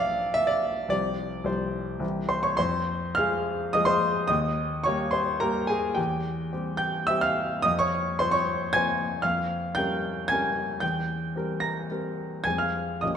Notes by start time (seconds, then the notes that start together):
Already playing: B1 F3 D4 G#4 D5 E5 F5
0.34 E5
0.47 D5
0.88 C2 F3 C4 G4 D5
1.44 C2 F3 C4 G4 C5
1.99 C2 E3 C4 G4
2.29 C5 C6
2.43 C#5 C#6
2.57 F2 C5 C6
3.15 F3 G#3 F5 F6
3.19 G#4
3.73 F3 G#3 G#4 D#5 D#6
3.85 C5 C6
4.28 D#2 D#5 D#6
4.84 G3 A#3 G4 C#5 C#6
5.11 C5 C6
5.40 G3 A#3 G4 A#4 A#5
5.67 G#4 G#5
5.95 E2 G4 G5
6.53 G3 C4 G4
6.77 G5 G6
7.07 G3 C4 G4 E5 E6
7.21 F5 F6
7.62 F2 D#5 D#6
7.79 C#5 C#6
8.19 F3 C4 C5 C6
8.31 C#5 C#6
8.73 F3 C4 C5 G#5 G#6
9.22 F2 F5 F6
9.75 G3 C#4 A#4 G5 G6
10.28 G3 C#4 G#5 G#6
10.32 A#4
10.80 E2 G5 G6
11.36 G3 C4 A#4
11.60 A#5 A#6
11.91 G3 C4 A#4
12.44 F2 G#3 C4 G#4 G#5 G#6
12.58 F5 F6
13.01 A#1 A#3 C#4 D#5 D#6
13.05 G4